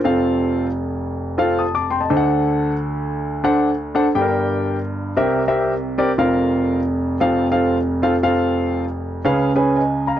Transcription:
0.04 2.06 F1 medium
0.04 2.06 F2 medium
0.04 0.65 C4 medium
0.04 0.66 F4 medium
0.04 0.65 A4 medium
0.04 0.66 F5 medium
1.38 1.63 C4 medium
1.38 1.63 F4 medium
1.38 1.63 A4 medium
1.38 1.59 F5 medium
1.59 1.74 A5 soft
1.59 1.74 D#6 medium
1.75 1.90 A5 soft
1.75 1.89 D6 medium
1.91 2.00 G5 medium
1.91 2.00 C6 medium
2.00 2.09 D#5 medium
2.00 2.24 A5 medium
2.10 4.11 D2 medium
2.10 4.11 D3 medium
2.10 2.71 D4 medium
2.10 2.71 A4 medium
2.10 2.71 C5 medium
2.10 2.18 D#5 medium
2.17 2.74 F#5 medium
3.44 3.68 D4 medium
3.44 3.69 A4 medium
3.44 3.69 C5 medium
3.44 3.69 F#5 medium
3.95 4.06 D4 medium
3.95 4.06 A4 medium
3.95 4.07 C5 medium
3.95 4.07 F#5 medium
4.15 5.13 G1 medium
4.15 5.13 G2 medium
4.15 4.75 D4 medium
4.15 4.75 G4 medium
4.15 4.23 A4 medium
4.15 4.76 G5 medium
4.21 4.79 A#4 medium
5.17 6.15 C2 medium
5.17 6.15 C3 medium
5.17 5.42 C4 medium
5.17 5.42 G4 medium
5.17 5.42 A#4 medium
5.17 5.42 E5 medium
5.47 5.72 C4 medium
5.47 5.73 G4 medium
5.47 5.73 A#4 medium
5.47 5.73 E5 medium
5.98 6.10 C4 medium
5.98 6.10 G4 medium
5.98 6.10 A#4 medium
5.98 6.10 D5 medium
6.18 7.17 F1 medium
6.18 7.17 F2 medium
6.18 6.79 C4 medium
6.18 6.79 F4 medium
6.18 6.79 A#4 medium
6.18 6.79 F5 medium
7.20 9.21 F1 medium
7.20 9.21 F2 medium
7.20 7.45 C4 medium
7.20 7.46 F4 medium
7.20 7.46 A4 medium
7.20 7.46 F5 medium
7.52 7.76 C4 medium
7.52 7.76 F4 medium
7.52 7.76 A4 medium
7.52 7.76 F5 medium
8.02 8.14 C4 medium
8.02 8.14 F4 medium
8.02 8.14 A4 medium
8.02 8.14 F5 medium
8.23 8.83 C4 medium
8.23 8.83 F4 medium
8.23 8.84 A4 medium
8.23 8.84 F5 medium
9.25 10.20 C#2 medium
9.25 10.20 C#3 medium
9.25 9.50 C#4 medium
9.25 9.50 G#4 medium
9.25 9.50 B4 medium
9.25 9.50 F5 medium
9.56 9.80 C#4 medium
9.56 9.80 G#4 medium
9.56 9.80 B4 medium
9.56 9.75 G#5 medium
9.76 10.06 D#5 medium
9.76 10.05 G#5 medium
10.07 10.17 F5 medium
10.07 10.17 A#5 medium
10.17 10.20 G#5 medium

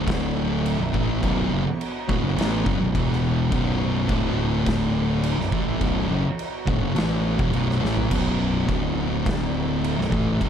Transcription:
0.00 0.75 D1 loud
0.00 0.78 D2 medium
0.00 0.78 A2 loud
0.00 0.78 D3 loud
0.00 0.78 D4 medium
0.00 0.78 A4 medium
0.00 0.79 E5 medium
0.07 kick loud
0.07 snare loud
0.07 crash medium
0.66 crash medium
0.78 0.93 B0 medium
0.78 0.93 B1 medium
0.78 0.94 F#2 medium
0.78 2.92 B3 medium
0.78 2.92 F#4 medium
0.78 2.92 C#5 medium
0.93 1.20 A1 loud
0.93 1.21 A2 medium
0.93 1.22 E3 loud
0.93 1.22 A3 loud
0.93 kick medium
1.21 1.49 B0 loud
1.21 1.50 B1 loud
1.21 1.50 F#2 loud
1.21 1.50 B2 loud
1.21 kick loud
1.21 crash medium
1.51 1.65 F#1 medium
1.51 1.65 F#2 medium
1.51 1.65 C#3 loud
1.81 crash medium
2.08 2.22 D1 loud
2.08 2.22 D2 medium
2.08 2.22 A2 medium
2.08 kick loud
2.22 2.36 F#1 loud
2.22 2.37 F#2 medium
2.22 2.37 C#3 loud
2.37 2.64 A1 medium
2.37 2.64 A2 loud
2.37 2.65 E3 loud
2.37 2.66 A3 loud
2.37 snare loud
2.37 crash medium
2.65 2.79 F#1 loud
2.65 2.79 F#2 loud
2.65 2.79 C#3 loud
2.65 kick loud
2.80 2.94 B0 medium
2.80 2.93 B1 medium
2.80 2.94 F#2 medium
2.94 3.48 E1 loud
2.94 3.50 E2 loud
2.94 3.51 B2 loud
2.94 3.51 E3 loud
2.94 kick loud
2.94 crash medium
3.12 snare soft
3.51 4.06 B0 loud
3.51 4.07 B1 loud
3.51 4.08 F#2 loud
3.51 4.08 B2 loud
3.51 kick loud
3.51 crash medium
4.08 5.34 D1 medium
4.08 5.36 D2 loud
4.08 5.37 A2 loud
4.08 5.37 D3 loud
4.08 5.37 D4 medium
4.08 5.37 A4 medium
4.08 5.37 E5 medium
4.08 kick loud
4.08 crash medium
4.66 kick loud
4.66 snare loud
4.66 crash medium
5.23 crash medium
5.37 5.51 B0 medium
5.37 5.52 B1 medium
5.37 5.52 F#2 medium
5.37 8.64 B3 medium
5.37 8.65 F#4 medium
5.37 8.65 C#5 loud
5.37 snare soft
5.52 5.79 A1 medium
5.52 5.80 A2 medium
5.52 5.80 E3 medium
5.52 5.81 A3 loud
5.52 kick loud
5.81 6.08 B0 loud
5.81 6.09 B1 loud
5.81 6.08 F#2 loud
5.81 6.10 B2 loud
5.81 kick loud
5.81 crash medium
6.09 6.23 F#1 medium
6.09 6.23 F#2 loud
6.09 6.24 C#3 loud
6.39 crash medium
6.67 6.80 D1 loud
6.67 6.80 D2 medium
6.67 6.81 A2 loud
6.67 kick loud
6.80 6.94 F#1 loud
6.80 6.94 F#2 medium
6.80 6.95 C#3 medium
6.95 7.35 A1 medium
6.95 7.37 A2 medium
6.95 7.37 E3 loud
6.95 7.38 A3 loud
6.95 crash medium
6.99 snare loud
7.38 7.53 E1 medium
7.38 7.52 E2 medium
7.38 7.52 B2 medium
7.38 kick loud
7.52 7.80 B0 loud
7.52 7.80 B1 loud
7.52 7.80 F#2 medium
7.52 7.81 B2 loud
7.52 crash medium
7.71 snare soft
7.81 8.09 A1 loud
7.81 8.09 A2 medium
7.81 8.09 E3 medium
7.81 8.10 A3 loud
7.85 snare medium
7.97 floor tom medium
8.09 8.65 B0 loud
8.09 8.66 B1 medium
8.09 8.67 F#2 loud
8.09 8.67 B2 loud
8.09 kick loud
8.09 crash loud
8.66 9.94 D1 medium
8.66 9.96 D2 medium
8.66 9.96 A2 loud
8.66 9.96 D3 loud
8.66 9.96 D4 medium
8.66 9.96 A4 medium
8.66 9.96 E5 medium
8.66 kick loud
8.66 crash medium
9.26 kick loud
9.26 snare loud
9.26 crash medium
9.84 crash medium
9.96 10.11 B0 medium
9.96 10.11 B1 medium
9.96 10.11 F#2 medium
9.96 10.49 B3 medium
9.96 10.49 F#4 medium
9.96 10.49 C#5 loud
10.01 snare soft
10.11 10.39 A1 loud
10.11 10.39 A2 medium
10.11 10.39 E3 medium
10.11 10.40 A3 loud
10.11 kick loud
10.40 10.49 B0 loud
10.40 10.49 B1 loud
10.40 10.49 F#2 medium
10.40 10.49 B2 loud
10.40 kick loud
10.40 crash medium

